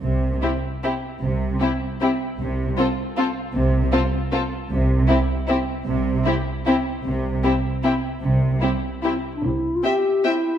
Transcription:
X:1
M:3/4
L:1/16
Q:1/4=153
K:C
V:1 name="Violin section"
z4 G4 G4 | z4 G4 G4 | z4 A4 A4 | z4 A4 A4 |
z4 G4 G4 | z4 G4 G4 | z4 G4 G4 | z4 G4 G4 |
z4 g4 g4 |]
V:2 name="Clarinet"
z12 | z12 | z12 | z12 |
z12 | z12 | z12 | z8 E3 D |
E3 F G4 E4 |]
V:3 name="Violin section"
z4 E4 E4 | z4 E4 E4 | z4 F4 F4 | z4 F4 F4 |
z4 E4 E4 | z4 E4 E4 | z4 E4 E4 | z4 E4 E4 |
z4 e4 e4 |]
V:4 name="Viola section"
z4 C4 C4 | z4 C4 C4 | z4 C4 C4 | z4 C4 C4 |
z4 C4 C4 | z4 C4 C4 | z4 C4 C4 | z4 C4 C4 |
z4 C4 C4 |]
V:5 name="Cello section" clef=bass
C,4 z8 | C,4 z8 | C,4 z8 | C,4 z8 |
C,4 z8 | C,4 z8 | C,4 z8 | C,4 z8 |
C,4 z8 |]
V:6 name="Double bass section" clef=bass
C,,4 z8 | C,,4 z8 | C,,4 z8 | C,,4 z8 |
C,,4 z8 | C,,4 z8 | C,,4 z8 | C,,4 z8 |
C,,4 z8 |]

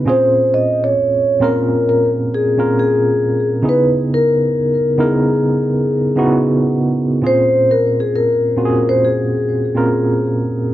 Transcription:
X:1
M:4/4
L:1/16
Q:"Swing 16ths" 1/4=67
K:Bbm
V:1 name="Vibraphone"
c2 e d3 B2 B2 A2 A3 z | _c2 B4 A8 z2 | c2 B A B3 c A6 z2 |]
V:2 name="Tine electric piano"
[B,,CDFA]4 z2 [B,,CDFB]3 z2 [B,,CDFB]3 z2 | [D,_CE_FA]4 z2 [D,CEFB]3 z2 [D,CEFG]3 z2 | [B,,CDFA]4 z2 [B,,CDFGA]3 z2 [B,,CDFB]3 z2 |]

